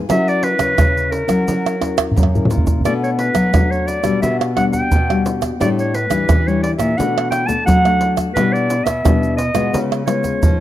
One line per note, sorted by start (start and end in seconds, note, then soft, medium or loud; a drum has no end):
0.09 0.74 F#3 medium
0.09 0.73 C#4 medium
0.09 0.73 E4 medium
0.09 0.73 A#4 medium
0.09 0.30 E5 loud
0.09 pandeiro medium
0.09 tamborim medium
0.09 shaker medium
0.09 surdo soft
0.28 0.45 D5 loud
0.28 pandeiro soft
0.28 shaker soft
0.43 1.13 B4 loud
0.43 pandeiro medium
0.59 0.74 C#3 medium
0.59 pandeiro medium
0.59 tamborim medium
0.59 shaker medium
0.59 surdo soft
0.77 1.43 C#3 medium
0.77 1.24 C#4 medium
0.77 1.24 E4 medium
0.77 pandeiro medium
0.77 tamborim medium
0.77 shaker medium
0.77 surdo loud
0.97 pandeiro soft
0.97 shaker soft
1.12 2.16 A#4 medium
1.12 pandeiro medium
1.27 1.44 F#3 medium
1.27 1.75 C#4 medium
1.27 1.75 E4 medium
1.27 1.75 A#4 medium
1.27 pandeiro medium
1.27 tamborim medium
1.27 shaker medium
1.27 surdo soft
1.47 2.13 F#3 medium
1.47 pandeiro medium
1.47 shaker medium
1.47 surdo medium
1.66 pandeiro soft
1.66 tamborim medium
1.66 shaker soft
1.80 2.13 C#4 medium
1.80 2.14 E4 medium
1.80 2.14 A#4 medium
1.80 pandeiro medium
1.80 tamborim medium
1.80 surdo soft
1.98 pandeiro medium
1.98 tamborim medium
1.98 shaker medium
1.98 surdo soft
2.12 2.81 C#3 medium
2.12 surdo loud
2.16 2.47 F#2 medium
2.16 pandeiro medium
2.16 shaker medium
2.16 surdo medium
2.23 tamborim medium
2.34 2.80 C#4 medium
2.34 2.80 E4 medium
2.34 2.80 A#4 medium
2.34 surdo medium
2.34 pandeiro soft
2.34 shaker soft
2.45 surdo medium
2.50 2.81 A#2 medium
2.50 pandeiro medium
2.50 shaker medium
2.57 surdo medium
2.67 pandeiro medium
2.67 shaker medium
2.67 surdo loud
2.80 3.50 B2 medium
2.80 surdo medium
2.85 3.48 A3 medium
2.85 3.49 D4 medium
2.85 3.49 F#4 medium
2.85 2.93 D5 medium
2.85 pandeiro medium
2.85 tamborim medium
2.85 shaker medium
2.85 surdo medium
3.03 3.11 C#5 medium
3.03 pandeiro soft
3.03 shaker soft
3.19 3.73 B4 medium
3.19 pandeiro medium
3.35 3.50 F#3 medium
3.35 pandeiro medium
3.35 tamborim medium
3.35 shaker medium
3.35 surdo soft
3.54 4.19 F#3 medium
3.54 4.00 A3 medium
3.54 4.00 D4 soft
3.54 4.00 F#4 medium
3.54 pandeiro medium
3.54 tamborim medium
3.54 shaker medium
3.54 surdo loud
3.71 3.88 C#5 medium
3.71 pandeiro soft
3.71 shaker soft
3.87 4.21 D5 medium
3.87 pandeiro medium
3.87 shaker medium
4.03 4.19 B2 medium
4.03 4.51 G3 medium
4.03 4.51 D4 medium
4.03 4.51 F#4 medium
4.03 pandeiro medium
4.03 tamborim medium
4.03 shaker medium
4.03 surdo soft
4.22 4.88 B2 medium
4.22 4.38 E5 medium
4.22 pandeiro medium
4.22 shaker medium
4.22 surdo medium
4.41 pandeiro soft
4.41 tamborim medium
4.41 shaker soft
4.56 4.89 G3 medium
4.56 4.90 D4 medium
4.56 4.90 F#4 medium
4.56 4.64 F#5 medium
4.56 pandeiro medium
4.56 tamborim medium
4.56 surdo soft
4.73 5.22 G5 medium
4.73 pandeiro medium
4.73 shaker medium
4.73 surdo soft
4.92 5.57 B2 medium
4.92 pandeiro medium
4.92 shaker medium
4.92 surdo medium
5.09 5.55 G3 medium
5.09 5.56 D4 medium
5.09 5.56 F#4 medium
5.09 pandeiro soft
5.09 tamborim medium
5.09 shaker soft
5.26 pandeiro medium
5.26 shaker medium
5.42 pandeiro medium
5.42 tamborim medium
5.42 shaker medium
5.42 surdo soft
5.60 6.26 A2 medium
5.60 5.93 G3 medium
5.60 5.93 D4 medium
5.60 5.93 E4 medium
5.60 5.69 D5 medium
5.60 pandeiro medium
5.60 tamborim medium
5.60 shaker medium
5.60 surdo medium
5.79 5.97 C#5 medium
5.79 pandeiro soft
5.79 shaker soft
5.94 6.49 B4 medium
5.94 pandeiro medium
6.10 6.26 E3 medium
6.10 6.40 G3 medium
6.10 6.40 D4 medium
6.10 6.41 E4 medium
6.10 pandeiro medium
6.10 tamborim medium
6.10 shaker medium
6.10 surdo soft
6.29 6.95 E3 medium
6.29 pandeiro medium
6.29 tamborim medium
6.29 shaker medium
6.29 surdo loud
6.47 6.93 G3 medium
6.47 6.93 D4 medium
6.47 6.93 E4 medium
6.47 6.62 C#5 medium
6.47 pandeiro soft
6.47 shaker soft
6.63 6.71 D5 medium
6.63 pandeiro medium
6.78 6.94 A#2 medium
6.78 6.99 E5 medium
6.78 pandeiro medium
6.78 tamborim medium
6.78 shaker medium
6.78 surdo soft
6.97 7.64 B2 medium
6.97 7.45 A3 medium
6.97 7.45 D4 medium
6.97 7.45 F#4 medium
6.97 7.30 F#5 medium
6.97 pandeiro medium
6.97 shaker medium
6.97 surdo medium
7.18 pandeiro soft
7.18 tamborim medium
7.18 shaker soft
7.31 7.48 G5 loud
7.31 pandeiro medium
7.31 tamborim medium
7.31 shaker medium
7.47 7.78 A3 medium
7.47 7.78 D4 medium
7.47 7.78 F#4 medium
7.47 7.65 A5 medium
7.47 pandeiro medium
7.47 shaker medium
7.47 surdo soft
7.66 8.33 F#3 medium
7.66 8.15 F#5 loud
7.66 pandeiro medium
7.66 shaker medium
7.66 surdo medium
7.85 8.31 A3 medium
7.85 8.31 D4 medium
7.85 8.31 F#4 medium
7.85 pandeiro soft
7.85 tamborim medium
7.85 shaker soft
8.01 pandeiro medium
8.17 pandeiro medium
8.17 tamborim medium
8.17 shaker medium
8.17 surdo soft
8.34 9.02 B2 medium
8.34 8.80 G3 medium
8.34 8.81 D4 medium
8.34 8.81 E4 medium
8.34 8.54 B4 loud
8.34 pandeiro medium
8.34 tamborim medium
8.34 shaker medium
8.34 surdo medium
8.53 8.86 D5 medium
8.53 pandeiro soft
8.53 shaker soft
8.70 pandeiro medium
8.70 shaker medium
8.84 9.01 B2 medium
8.84 9.36 E5 medium
8.84 pandeiro medium
8.84 tamborim medium
8.84 shaker medium
8.84 surdo soft
9.05 9.70 B2 medium
9.05 9.37 G3 medium
9.05 9.37 D4 medium
9.05 9.38 E4 medium
9.05 pandeiro medium
9.05 tamborim medium
9.05 shaker medium
9.05 surdo loud
9.23 pandeiro soft
9.23 shaker soft
9.37 9.77 D#5 medium
9.37 pandeiro medium
9.37 shaker medium
9.54 9.70 B2 medium
9.54 10.02 G#3 medium
9.54 10.02 B3 medium
9.54 10.02 F4 medium
9.54 pandeiro medium
9.54 tamborim medium
9.54 shaker medium
9.54 surdo soft
9.73 10.39 C#3 medium
9.73 pandeiro medium
9.73 shaker medium
9.73 surdo medium
9.92 pandeiro soft
9.92 tamborim medium
9.92 shaker soft
10.05 10.54 G#3 medium
10.05 10.54 B3 medium
10.05 10.54 F4 medium
10.05 10.60 C#5 medium
10.05 pandeiro medium
10.05 tamborim medium
10.05 shaker medium
10.24 pandeiro medium
10.24 shaker medium
10.24 surdo soft
10.42 10.60 G#2 medium
10.42 10.60 F3 medium
10.42 pandeiro medium
10.42 shaker medium
10.42 surdo loud